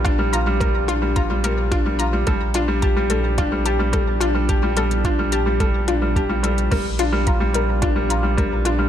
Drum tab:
CC |----------------|----------------|----------------|x---------------|
HH |x-x-x-x-x-x-x-x-|x-x-x-x-x-x-x-x-|x-xxx-x-x-x-x-xx|x-x-x-x-x-x-x-x-|
BD |o---o---o---o---|o---o---o---o---|o---o---o---o---|o---o---o---o---|